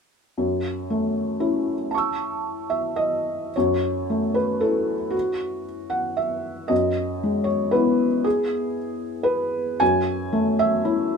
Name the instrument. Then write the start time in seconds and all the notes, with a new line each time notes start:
felt piano
0.38 F#2
0.90 A3
1.40 C#4 E4
1.91 A5 C#6
1.98 E6
2.70 E5
2.96 D#5
3.56 F#2 C#5
4.10 A3
4.34 B4
4.60 C#4 E4 A4
5.10 F#4
5.90 F#5
6.17 E5
6.68 F#2 D#5
7.23 G#3
7.44 C#5
7.71 B3 E4 B4
8.24 G#4
9.23 B4
9.80 F#2 G#5
10.33 A3
10.59 E5
10.85 C#4 E4